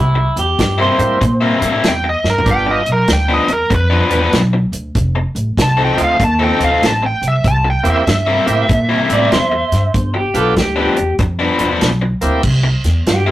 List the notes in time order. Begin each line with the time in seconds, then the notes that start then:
Already playing: C2
0.00 E4
0.15 muted overdriven electric guitar stroke
0.36 E2 G4, closed hi-hat
0.58 G2, kick, snare, closed hi-hat
0.78 C3 G3 A#3 E4 C5
0.98 A2 G3 A#3 C4 E4, muted overdriven electric guitar stroke, closed hi-hat
1.21 A#2, muted overdriven electric guitar stroke, kick, closed hi-hat
1.41 C3 G3 A#3 E4
1.61 A2 C3 G3 A#3 E4, closed hi-hat
1.72 C3 G3 A#3 E4
1.84 E2, snare, closed hi-hat
1.88 G5
2.04 muted overdriven electric guitar stroke
2.09 D#5
2.24 G2, snare
2.30 A#4
2.38 floor tom
2.44 G1 G3 B3 D4 F4, kick, closed hi-hat
2.51 G5
2.66 muted overdriven electric guitar stroke
2.71 D#5
2.86 B1, closed hi-hat
2.92 A#4
3.08 D2, snare, closed hi-hat
3.13 G5
3.28 G2 F3 B3 D4
3.34 D#5
3.48 E2, muted overdriven electric guitar stroke, closed hi-hat
3.52 A#4
3.70 F2, muted overdriven electric guitar stroke, kick, closed hi-hat
3.75 B4
3.90 G2 F3 B3 D4
4.10 E2 G2 F3 B3 D4, closed hi-hat
4.22 G2 F3 B3 D4
4.33 B1, snare, closed hi-hat
4.53 muted overdriven electric guitar stroke
4.72 D2, closed hi-hat
4.95 F1, kick, closed hi-hat
5.15 muted overdriven electric guitar stroke
5.35 A1, closed hi-hat
5.57 C2, kick, snare, closed hi-hat
5.62 A5
5.77 F3 C4 D#4 A4
5.85 G5
5.96 D2 A3 C4 D#4 F4, muted overdriven electric guitar stroke, closed hi-hat
6.04 F5
6.19 D#2, muted overdriven electric guitar stroke, kick, closed hi-hat
6.24 A5
6.39 F3 C4 D#4 A4
6.44 G5
6.59 D2 F3 C4 D#4 A4, closed hi-hat
6.64 F5
6.70 F3 C4 D#4 A4
6.82 A1 A5, snare, closed hi-hat
7.02 G5, muted overdriven electric guitar stroke
7.22 C2, closed hi-hat
7.28 E5
7.44 C2 A5, kick, closed hi-hat
7.64 muted overdriven electric guitar stroke
7.70 G5
7.83 E2 A#3 C4 E4 G4, closed hi-hat
7.90 E5
8.07 G2 E5, snare, closed hi-hat
8.26 C3 G3 A#3 E4
8.45 A2 A#3 C4 E4 G4, muted overdriven electric guitar stroke, closed hi-hat
8.69 A#2, muted overdriven electric guitar stroke, kick, closed hi-hat
8.89 C3 G3 A#3 E4
9.09 A2 C3 G3 A#3 E4, closed hi-hat
9.13 D5
9.20 C3 G3 A#3 E4
9.32 E2 C5, snare, closed hi-hat
9.51 muted overdriven electric guitar stroke
9.72 G2, snare, closed hi-hat
9.94 G1, kick, closed hi-hat
10.14 G4, muted overdriven electric guitar stroke
10.34 B1 B3 D4 F4 G4 A4, closed hi-hat
10.56 D2 G4, kick, snare, closed hi-hat
10.76 G2 F3 B3 D4
10.80 G4
10.96 E2, muted overdriven electric guitar stroke, closed hi-hat
11.19 F2, muted overdriven electric guitar stroke, kick, closed hi-hat
11.39 G2 F3 B3 D4
11.59 E2 G2 F3 B3 D4, closed hi-hat
11.70 G2 F3 B3 D4
11.81 B1, snare, closed hi-hat
12.01 muted overdriven electric guitar stroke
12.21 D2 A#3 C4 E4 G4, closed hi-hat
12.43 C2, kick, crash
12.63 muted overdriven electric guitar stroke
12.84 E2, snare, closed hi-hat
13.06 G2 G4, snare, closed hi-hat
13.26 C3 G3 A#3 E4